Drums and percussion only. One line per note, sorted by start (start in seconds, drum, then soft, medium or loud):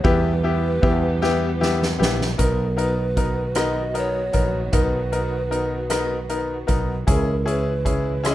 0.04 kick loud
0.04 ride medium
0.45 ride soft
0.83 kick medium
0.83 ride soft
1.23 snare medium
1.62 snare medium
1.82 snare medium
2.02 snare loud
2.21 snare medium
2.39 kick medium
2.39 closed hi-hat medium
2.78 closed hi-hat soft
3.17 kick medium
3.17 closed hi-hat soft
3.55 cross-stick medium
3.55 closed hi-hat medium
3.95 closed hi-hat soft
4.33 kick medium
4.33 closed hi-hat soft
4.73 kick loud
4.73 closed hi-hat medium
5.13 closed hi-hat soft
5.52 closed hi-hat soft
5.90 cross-stick medium
5.90 closed hi-hat medium
6.30 closed hi-hat soft
6.68 kick medium
6.68 closed hi-hat soft
7.08 kick medium
7.08 closed hi-hat medium
7.48 closed hi-hat soft
7.86 kick medium
7.86 closed hi-hat soft
8.25 cross-stick loud
8.25 closed hi-hat medium